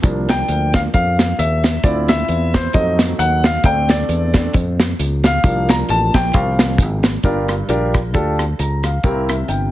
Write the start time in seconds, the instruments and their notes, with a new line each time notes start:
0.02 fingered electric bass C2, upright piano F3 A#3 D4, kick, closed hi-hat
0.29 upright piano G5, snare, closed hi-hat
0.48 fingered electric bass D2, closed hi-hat
0.74 upright piano F5, kick, snare, closed hi-hat
0.94 fingered electric bass F2, upright piano F5, kick, closed hi-hat
1.19 snare, closed hi-hat
1.39 fingered electric bass D#2, upright piano E5, closed hi-hat
1.64 snare, closed hi-hat
1.83 fingered electric bass D2, upright piano C4 E4 F4 D5, kick, closed hi-hat
2.08 upright piano E5, snare, closed hi-hat
2.29 fingered electric bass E2, closed hi-hat
2.54 upright piano C5, kick, snare, closed hi-hat
2.73 fingered electric bass F2, upright piano F#3 A3 D#4 D#5, kick, closed hi-hat
2.99 snare, closed hi-hat
3.18 fingered electric bass D#2, upright piano F#5, closed hi-hat
3.44 upright piano F5, snare, closed hi-hat
3.64 fingered electric bass D2, upright piano A3 C4 D4 G5, kick, closed hi-hat
3.89 upright piano D5, snare, closed hi-hat
4.09 fingered electric bass E2, closed hi-hat
4.34 upright piano A3 C4 D4, kick, snare, closed hi-hat
4.53 fingered electric bass F2, kick, closed hi-hat
4.80 snare, closed hi-hat
4.99 fingered electric bass C#2, closed hi-hat
5.24 upright piano F5, snare, closed hi-hat
5.44 fingered electric bass C2, upright piano F3 A#3 D4, kick, closed hi-hat
5.69 upright piano A#5, snare, closed hi-hat
5.89 fingered electric bass A1, upright piano A5, closed hi-hat
6.14 fingered electric bass A#1, upright piano G5, kick, snare, closed hi-hat
6.33 fingered electric bass C2, upright piano F5, kick, closed hi-hat
6.59 snare, closed hi-hat
6.78 fingered electric bass G#1, kick, closed hi-hat
7.03 snare, closed hi-hat
7.23 fingered electric bass G1, upright piano G2 D4 F4 G4 A#4, kick, closed hi-hat
7.48 cross-stick, closed hi-hat
7.69 fingered electric bass A#1, upright piano D4 F4 G4 A#4, closed hi-hat
7.94 kick, cross-stick, closed hi-hat
8.14 fingered electric bass D2, upright piano D4 F4 G4 A4, kick, closed hi-hat
8.39 cross-stick, closed hi-hat
8.59 fingered electric bass C#2, upright piano A#5, closed hi-hat
8.83 upright piano F5, cross-stick, closed hi-hat
9.03 fingered electric bass C2, upright piano C3 C4 E4 G4 A#4, kick, closed hi-hat
9.29 upright piano E5, cross-stick, closed hi-hat
9.48 fingered electric bass G1, upright piano G5, closed hi-hat